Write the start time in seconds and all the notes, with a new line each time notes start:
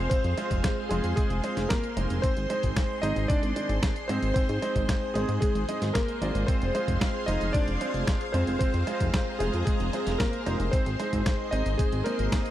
Already playing: G#3 C4 F4 G#4 C5 F5 C6
0.10 C4 C5, kick, closed hi-hat
0.24 F2, closed hi-hat
0.38 G#3 C4 F4 C5, closed hi-hat
0.51 F1, kick, closed hi-hat
0.64 kick, snare, closed hi-hat
0.89 F1 G#3 C4 F4 G#4 C5, closed hi-hat
1.04 F2, closed hi-hat
1.16 G#3 G#4, kick, closed hi-hat
1.30 F1, closed hi-hat
1.44 G#3 C4 F4 C5, closed hi-hat
1.57 F1, snare, closed hi-hat
1.69 A#3 A#4, kick, snare, closed hi-hat
1.84 closed hi-hat
1.97 F1 G#3 C4 D#4 C5, closed hi-hat
2.10 F1, closed hi-hat
2.22 C4 G#4 C5, kick, closed hi-hat
2.37 G#1, closed hi-hat
2.50 G#3 C4 D#4 C5, closed hi-hat
2.63 G#1, kick, closed hi-hat
2.77 kick, snare, closed hi-hat
3.02 G#1 G#3 C4 D#4 C5 D#5, closed hi-hat
3.16 G#1, closed hi-hat
3.28 D4 D5, kick, closed hi-hat
3.43 G#1, closed hi-hat
3.56 D#3 G#3 C4 C5, closed hi-hat
3.69 G#1, closed hi-hat
3.83 kick, snare, closed hi-hat
3.96 closed hi-hat
4.08 G#2 G#3 C4 D#4 C5, closed hi-hat
4.22 G#1, closed hi-hat
4.34 C4 C5, kick, closed hi-hat
4.49 G#2, closed hi-hat
4.62 G#3 C4 D#4 C5, closed hi-hat
4.76 G#1, kick, closed hi-hat
4.89 kick, snare, closed hi-hat
5.14 G#1 G#3 C4 D#4 G#4 C5, closed hi-hat
5.29 G#2, closed hi-hat
5.41 G#3 G#4, kick, closed hi-hat
5.55 G#1, closed hi-hat
5.69 G#3 C4 D#4 D#5, closed hi-hat
5.82 G#1, snare, closed hi-hat
5.94 A#3 A#4, kick, snare, closed hi-hat
6.08 closed hi-hat
6.22 G#1 G#3 C4 F4 D5, closed hi-hat
6.35 G#1, closed hi-hat
6.47 C4 C5 F5 C6, kick, closed hi-hat
6.62 F1, closed hi-hat
6.75 G#3 C4 F4 C5, closed hi-hat
6.88 F1, kick, closed hi-hat
7.01 kick, snare, closed hi-hat
7.26 F1 G#3 C4 D#4 F4 C5 D#5, closed hi-hat
7.41 F1, closed hi-hat
7.53 D4 D5, kick, closed hi-hat
7.68 F1, closed hi-hat
7.81 G#3 C4 F4 C5, closed hi-hat
7.94 F1, closed hi-hat
8.07 kick, snare, closed hi-hat
8.21 closed hi-hat
8.32 F2 G#3 C4 F4 C5, closed hi-hat
8.47 F1, closed hi-hat
8.59 C4 C5 A#5, kick, closed hi-hat
8.74 F2, closed hi-hat
8.87 G#3 C4 F4 C5, closed hi-hat
9.00 F1, kick, closed hi-hat
9.14 kick, snare, closed hi-hat
9.39 F1 G#3 C4 F4 G#4 C5, closed hi-hat
9.54 F2, closed hi-hat
9.65 G#3 G#4, kick, closed hi-hat
9.80 F1, closed hi-hat
9.93 G#3 C4 F4 C5, closed hi-hat
10.07 F1, snare, closed hi-hat
10.18 A#3 A#4, kick, snare, closed hi-hat
10.33 closed hi-hat
10.46 F1 G#3 C4 D#4 C5, closed hi-hat
10.60 F1, closed hi-hat
10.71 C4 C5 D#5 C6, kick, closed hi-hat
10.86 G#1, closed hi-hat
11.00 G#3 C4 D#4 C5, closed hi-hat
11.13 G#1, kick, closed hi-hat
11.26 kick, snare, closed hi-hat
11.51 G#1 G#3 C4 D#4 C5 D#5, closed hi-hat
11.66 G#1, closed hi-hat
11.78 G#3 G#4, kick, closed hi-hat
11.92 G#1, closed hi-hat
12.04 G#3 A#3 C4 D#4 A#4 C5, closed hi-hat
12.19 G#1, closed hi-hat
12.32 kick, snare, closed hi-hat
12.46 closed hi-hat